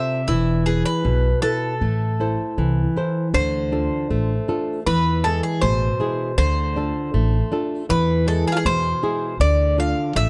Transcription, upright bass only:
0.28 E1
1.05 B1
1.81 A1
2.58 C2
3.34 D2
4.10 A1
4.86 E2
5.62 A1
6.38 D2
7.14 A1
7.90 E2
8.65 E2
9.40 D2
10.16 A1

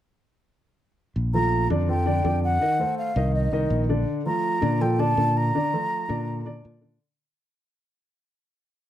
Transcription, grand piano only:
1.34 F3 A3 F4
1.70 D3 D4 D5
1.88 F3 F4 A4
2.05 D3 D4 D5
2.24 D3 D4 D5
2.61 D#3 D#4 D#5
2.79 A3 A4 C5
3.16 D#3 D#4 D#5
3.52 D#3 D#4 D#5
3.89 D3 D4 D5
4.25 F3 A3 F4
4.61 D3 D4 D5
4.80 F3 F4 A4
4.99 D3 D4 D5
5.17 D3 D4 D5
5.54 D3 D4 D5
5.73 F3 A3 F4
6.09 D3 D4 D5
6.45 D3 D4 D5
6.81 D3 D4 D5

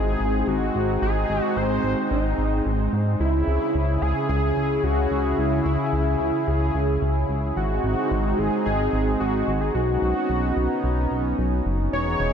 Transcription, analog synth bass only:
Already playing: G#1
0.20 G#1
0.47 G#1
0.75 G#1
1.02 G#1
1.29 G#1
1.57 G#1
1.84 G#1
2.11 G#1
2.38 G#1
2.66 G#1
2.93 G#2
3.20 C#2
3.47 C#2
3.75 C#2
4.02 C#2
4.29 C#2
4.57 C#2
4.84 C#2
5.11 C#2
5.38 C#2
5.65 C#2
5.93 C#2
6.20 C#2
6.48 C#2
6.75 C#2
7.02 C#2
7.29 C#2
7.57 G#1
7.84 G#1
8.11 G#1
8.39 G#1
8.66 G#1
8.93 G#1
9.20 G#1
9.48 G#1
9.75 B1
10.02 B1
10.29 B1
10.57 B1
10.84 B1
11.11 B1
11.38 B1
11.65 F#1
11.93 E1
12.20 E1

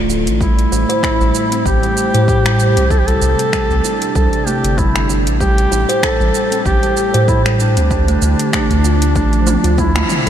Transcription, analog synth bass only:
Already playing: D1
0.27 A1
0.72 A1
1.21 A1
1.66 A1
2.15 A2
2.77 C2
3.22 C2
3.71 C2
4.16 C2
4.64 G1
5.27 A1
5.72 A1
6.21 A1
6.66 A1
7.15 A2
7.77 D2
8.22 D2
8.71 D2
9.16 A1
9.64 D2

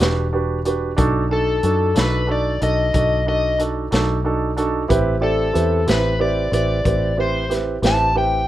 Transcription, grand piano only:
0.00 D4 F#4 G4 B4
0.33 D4 F#4 G4 B4
0.65 D4 F#4 G4 B4
0.97 D4 D#4 F#4 A4
1.30 D4 D#4 F#4 A4
1.63 D4 D#4 F#4 A4
1.95 D4 D#4 F#4 A4
2.27 D4 D#4 F#4 A4
2.61 D4 D#4 F#4 A4
2.93 D4 D#4 F#4 A4
3.26 D4 D#4 F#4 A4
3.58 D4 D#4 F#4 A4
3.91 D4 D#4 F#4 A4
4.24 D4 D#4 F#4 A4
4.57 D4 D#4 F#4 A4
4.88 C4 E4 G4 B4
5.21 C4 E4 G4 D5
5.53 C4 E4 G4 B4
5.86 C4 E4 G4 B4
6.19 C4 E4 G4 B4
6.51 C4 E4 G4 B4
6.84 C4 E4 G4 B4
7.17 C4 E4 G4 B4
7.49 C4 E4 G4 B4
7.82 C4 E4 G4 B4
8.14 C4 E4 G4 B4

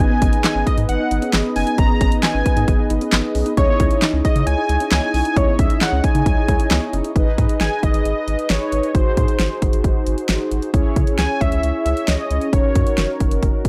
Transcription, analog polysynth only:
0.00 B3 D#4 G#4 B4 D#5
3.58 D#4 E4 G#4 C#5 D#5
7.16 D#4 G#4 B4 D#5
8.95 D#4 F#4 G#4 C5
10.74 C#4 E4 G#4 C#5
12.53 C#4 D#4 F#4 A#4

